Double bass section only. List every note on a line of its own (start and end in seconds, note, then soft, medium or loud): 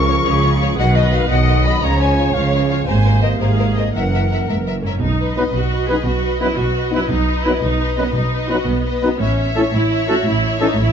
0.00 0.19 C#2 medium
0.25 0.71 C#2 medium
0.78 1.24 B1 medium
1.29 1.75 B1 medium
1.81 2.27 C#2 medium
2.34 2.80 C#2 medium
2.87 3.33 G#1 medium
3.40 3.87 G#1 medium
3.94 4.41 F#1 soft
4.49 4.95 F#1 soft
5.01 5.45 B1 medium
5.54 5.97 B1 medium
6.07 6.50 B1 medium
6.58 7.02 B1 soft
7.10 7.54 B1 medium
7.63 8.07 B1 soft
8.15 8.59 B1 soft
8.68 9.12 B1 medium
9.21 9.64 A1 medium
9.73 10.16 A1 medium
10.26 10.69 A1 medium
10.78 10.92 A1 medium